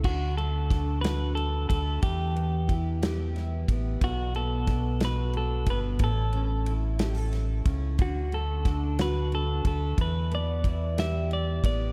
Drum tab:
CC |x-----|------|------|------|
RD |-xxxxx|xxxxxx|xxxxxx|xxxxxx|
SD |--oo--|---oo-|--oo--|---oo-|
BD |o-o--o|o-o--o|o-o--o|o----o|

CC |------|------|
RD |xxxxxx|xxxxxx|
SD |--oo--|---o--|
BD |o-o--o|o-o--o|